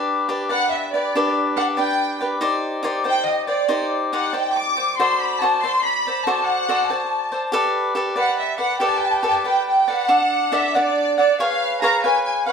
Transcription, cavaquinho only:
0.00 0.29 D4 medium
0.00 0.28 G4 medium
0.00 0.29 B4 medium
0.00 0.29 D5 medium
0.29 0.50 D4 medium
0.29 0.49 G4 medium
0.29 0.49 B4 medium
0.29 0.48 D5 medium
0.49 1.15 D4 soft
0.49 0.95 G4 soft
0.49 0.93 B4 soft
0.49 0.93 D5 soft
0.94 1.15 G4 soft
0.94 1.15 B4 soft
0.94 1.15 D5 soft
1.15 1.56 D4 medium
1.15 1.57 G4 medium
1.15 1.57 B4 medium
1.15 1.59 D5 medium
1.57 1.77 D4 medium
1.57 1.77 G4 medium
1.57 1.77 B4 medium
1.57 1.76 D5 medium
1.77 2.40 D4 soft
1.77 2.22 G4 soft
1.77 2.20 B4 soft
1.77 2.20 D5 soft
2.21 2.40 G4 soft
2.21 2.41 B4 soft
2.21 2.41 D5 soft
2.41 2.81 D#4 medium
2.41 2.83 G4 medium
2.41 2.84 C5 medium
2.41 2.85 D5 medium
2.83 3.04 D#4 medium
2.83 3.04 G4 medium
2.83 3.04 C5 medium
2.83 3.03 D5 medium
3.04 3.48 D#4 soft
3.04 3.48 G4 soft
3.04 3.47 C5 medium
3.04 3.47 D5 medium
3.47 3.67 G4 soft
3.47 3.68 C5 soft
3.47 3.69 D5 soft
3.68 4.11 D#4 medium
3.68 4.12 G4 medium
3.68 4.13 C5 medium
3.68 4.13 D5 medium
4.13 4.33 D#4 medium
4.13 4.33 G4 medium
4.13 4.32 C5 medium
4.13 4.32 D5 medium
4.33 4.78 D#4 soft
4.33 4.77 G4 soft
4.33 4.77 C5 soft
4.33 4.76 D5 soft
4.76 4.99 G4 soft
4.76 4.99 C5 soft
4.76 4.98 D5 soft
4.99 5.40 F#4 medium
4.99 5.43 A4 medium
4.99 5.42 C5 medium
4.99 5.43 D5 medium
5.42 5.63 F#4 medium
5.42 5.63 A4 soft
5.42 5.63 C5 medium
5.42 5.62 D5 medium
5.63 6.07 F#4 soft
5.63 6.07 A4 soft
5.63 6.06 C5 soft
5.63 6.06 D5 soft
6.07 6.26 A4 soft
6.07 6.26 C5 soft
6.07 6.27 D5 soft
6.27 6.67 F#4 medium
6.27 6.68 A4 medium
6.27 6.68 C5 medium
6.27 6.69 D5 medium
6.69 6.90 F#4 medium
6.69 6.90 A4 medium
6.69 6.89 C5 medium
6.69 6.89 D5 medium
6.90 7.33 F#4 soft
6.90 7.33 A4 soft
6.90 7.31 C5 soft
6.90 7.31 D5 soft
7.32 7.52 A4 soft
7.32 7.53 C5 soft
7.32 7.53 D5 soft
7.52 7.94 G4 medium
7.52 7.95 A4 medium
7.52 7.95 B4 medium
7.52 7.97 D5 loud
7.95 8.16 G4 medium
7.95 8.15 A4 medium
7.95 8.15 B4 medium
7.95 8.15 D5 medium
8.16 8.58 G4 soft
8.16 8.59 A4 soft
8.16 8.57 B4 soft
8.16 8.58 D5 medium
8.58 8.80 A4 soft
8.58 8.79 B4 soft
8.58 8.80 D5 soft
8.80 9.22 G4 medium
8.80 9.23 A4 medium
8.80 9.22 B4 medium
8.80 9.23 D5 medium
9.23 9.44 G4 medium
9.23 9.44 A4 medium
9.23 9.44 B4 medium
9.23 9.43 D5 medium
9.44 9.89 G4 soft
9.44 9.89 A4 soft
9.44 9.87 B4 soft
9.44 9.87 D5 soft
9.88 10.08 A4 soft
9.88 10.09 B4 soft
9.88 10.08 D5 soft
10.08 10.51 D4 medium
10.08 10.51 A4 medium
10.08 10.51 D5 medium
10.08 10.52 F#5 medium
10.52 10.74 D4 medium
10.52 10.75 A4 medium
10.52 10.75 D5 medium
10.52 10.74 F#5 medium
10.75 11.19 D4 medium
10.75 11.18 A4 soft
10.75 11.17 D5 soft
10.75 11.17 F#5 soft
11.18 11.39 A4 soft
11.18 11.40 D5 soft
11.18 11.40 F#5 soft
11.40 11.81 G#4 medium
11.40 11.82 B4 medium
11.40 11.83 C#5 medium
11.40 11.83 F5 medium
11.82 12.04 G#4 medium
11.82 12.03 B4 medium
11.82 12.03 C#5 medium
11.82 12.03 F5 medium
12.04 12.47 G#4 soft
12.04 12.46 B4 medium
12.04 12.47 C#5 soft
12.04 12.45 F5 soft
12.46 12.52 B4 soft
12.46 12.52 C#5 soft
12.46 12.52 F5 soft

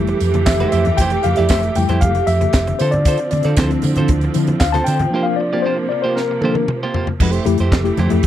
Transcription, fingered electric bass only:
0.00 0.12 F1 medium
0.21 0.48 F2 loud
0.47 0.64 F1 loud
0.73 0.90 F2 medium
0.98 1.16 F1 medium
1.25 1.34 F2 medium
1.39 1.47 F2 medium
1.50 1.68 F1 loud
1.77 1.85 F2 loud
1.90 1.98 F2 medium
2.03 2.20 F1 loud
2.27 2.45 F2 medium
2.54 2.71 F1 loud
2.81 3.15 D3 medium
3.33 3.41 D3 medium
3.45 3.54 D3 medium
3.57 3.75 D2 loud
3.84 3.93 D3 loud
3.97 4.06 D3 loud
4.09 4.27 D2 loud
4.36 4.53 D3 medium
4.61 4.78 D2 loud
4.88 5.05 D3 loud
7.21 7.38 F1 medium
7.46 7.55 F2 medium
7.60 7.69 F2 medium
7.72 7.90 F1 loud
7.98 8.07 F2 medium
8.11 8.20 F2 loud

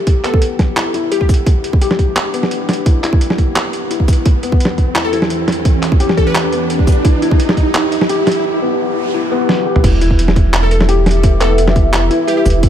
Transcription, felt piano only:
0.00 0.77 E4 medium
0.00 0.23 G4 loud
0.24 0.75 B3 medium
0.77 0.93 E4 medium
0.94 1.62 E4 loud
1.81 2.32 G4 loud
2.34 2.84 B3 medium
2.86 3.02 E4 medium
3.04 3.72 E4 loud
3.91 4.07 E4 medium
4.43 4.94 B3 medium
4.95 5.11 E4 medium
5.13 5.81 E4 loud
6.00 6.51 G4 loud
6.52 7.03 B3 medium
7.05 7.21 E4 medium
7.22 7.90 E4 loud
8.09 8.60 G4 loud
8.62 9.12 B3 medium
9.14 9.31 E4 medium
9.31 9.47 B3 loud
9.66 9.82 G4 medium
9.84 10.00 E4 medium
10.01 10.69 E4 loud
10.89 11.39 G4 loud
11.41 11.92 B3 medium
11.93 12.09 E4 medium
12.11 12.69 E4 loud

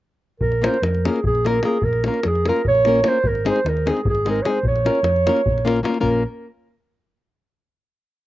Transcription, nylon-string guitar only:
0.62 0.76 A#3 medium
0.62 0.77 C#4 soft
0.62 0.77 F4 soft
0.62 0.77 A#4 medium
1.05 1.18 A#3 medium
1.05 1.19 C#4 soft
1.05 1.19 F4 soft
1.05 1.20 A#4 medium
1.45 1.58 A#3 medium
1.45 1.58 C#4 soft
1.45 1.59 F4 medium
1.45 1.59 A#4 medium
1.63 1.77 A#3 soft
1.63 1.77 C#4 soft
1.63 1.78 F4 soft
1.63 1.78 A#4 medium
2.06 2.19 A#3 medium
2.06 2.19 C#4 soft
2.06 2.20 F4 soft
2.06 2.20 A#4 medium
2.48 2.60 A#3 medium
2.48 2.60 C#4 soft
2.48 2.61 F4 medium
2.48 2.61 A#4 medium
2.87 3.00 A#3 medium
2.87 3.00 C#4 medium
2.87 3.00 F4 medium
2.87 3.00 A#4 medium
3.03 3.17 A#3 medium
3.03 3.18 C#4 medium
3.03 3.18 F4 medium
3.03 3.18 A#4 medium
3.45 3.59 G#3 medium
3.45 3.59 C4 medium
3.45 3.59 D#4 soft
3.45 3.60 G#4 medium
3.86 4.00 G#3 medium
3.86 4.00 C4 soft
3.86 4.00 D#4 medium
3.86 4.01 G#4 medium
4.25 4.39 G#3 medium
4.25 4.39 C4 medium
4.25 4.40 D#4 medium
4.25 4.40 G#4 medium
4.45 4.58 G#3 medium
4.45 4.58 C4 medium
4.45 4.58 D#4 soft
4.45 4.59 G#4 medium
4.85 4.99 A#3 soft
4.85 4.99 C#4 soft
4.85 4.99 F4 soft
4.85 4.99 A#4 medium
5.26 5.40 A#3 medium
5.26 5.40 C#4 medium
5.26 5.41 F4 medium
5.26 5.41 A#4 medium
5.65 5.78 A#3 medium
5.65 5.79 C#4 medium
5.65 5.79 F4 medium
5.65 5.80 A#4 medium
5.83 5.97 A#3 medium
5.83 5.97 C#4 medium
5.83 5.97 F4 medium
5.83 5.98 A#4 medium
6.00 6.23 A#3 medium
6.00 6.22 C#4 soft
6.00 6.22 F4 medium
6.00 6.22 A#4 medium

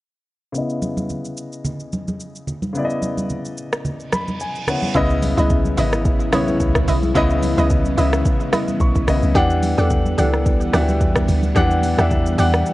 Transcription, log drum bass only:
4.95 5.35 C#2 loud
5.38 5.75 C#2 loud
5.78 6.34 G#1 loud
6.33 6.58 B1 medium
6.60 6.86 C#2 medium
6.88 7.13 B1 loud
7.15 7.55 C#2 loud
7.58 7.95 C#2 loud
7.98 8.23 C#2 loud
8.80 9.06 B1 medium
9.08 9.22 B1 medium
9.23 9.35 C#2 medium
9.35 9.75 E2 loud
9.78 10.15 E2 loud
10.18 10.69 C#2 loud
10.73 11.02 D2 medium
11.01 11.26 E2 loud
11.28 11.54 D2 loud
11.56 11.95 E2 loud
11.98 12.35 E2 loud
12.38 12.64 E2 loud

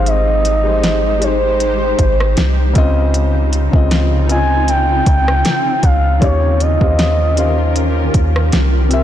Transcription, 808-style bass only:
0.00 1.95 G#1 loud
1.99 2.36 G#1 loud
2.38 2.74 C2 loud
2.76 3.70 C#2 loud
3.73 5.03 C#2 loud
5.07 5.44 C#2 loud
5.83 6.20 C#2 loud
6.22 6.79 D#2 loud
6.81 8.10 D#2 loud
8.15 8.51 D#2 loud
8.53 9.03 C2 loud

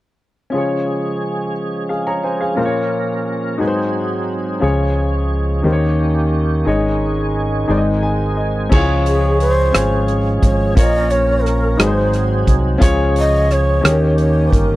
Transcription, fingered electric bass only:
4.63 5.61 C#2 medium
5.65 6.63 D#2 medium
6.67 7.65 G#1 medium
7.69 8.68 G#1 medium
8.72 9.70 C#2 medium
9.75 10.39 G#1 medium
10.43 10.74 G#1 medium
10.77 11.75 A#1 medium
11.79 12.43 G#1 medium
12.48 12.79 C2 medium
12.82 13.80 C#2 medium
13.85 14.49 D#2 medium
14.52 14.76 G1 medium

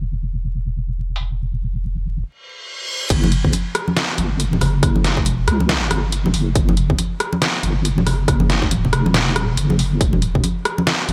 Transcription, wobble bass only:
0.00 2.24 E1 medium
3.10 3.52 F#1 loud
4.18 4.60 G1 loud
4.61 5.21 F#1 loud
5.21 5.46 F1 loud
5.48 5.89 C#2 medium
5.91 6.32 G1 loud
6.34 6.54 F#1 loud
6.55 6.97 F#1 medium
7.63 8.05 G1 loud
8.06 8.91 F#1 loud
8.93 9.56 E1 loud
9.57 9.99 F#1 loud
10.01 10.42 E1 loud
11.09 11.13 F#1 loud

